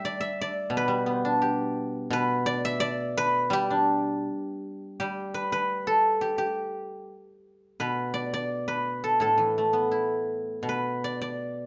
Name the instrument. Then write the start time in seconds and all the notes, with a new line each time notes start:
guzheng
Already playing: G3 A4 B4 E5 G5
0.05 D5
0.21 E5
0.41 D5
0.70 B2
0.77 B4
0.88 G3
1.06 B3
1.25 D4
1.42 G4
2.10 B2 B4
2.46 D5
2.65 E5
2.80 D5
3.17 B4
3.50 G3 G4
3.70 D4
5.00 G3 G4
5.34 B4
5.52 B4
5.87 A4
6.21 G4
6.38 G4
7.80 B2 B4
8.14 D5
8.34 D5
8.68 B4
9.04 A4
9.20 A2 A4
9.38 E3
9.58 A3
9.73 B3
9.91 E4
10.63 B2
10.69 B4
11.04 D5
11.22 D5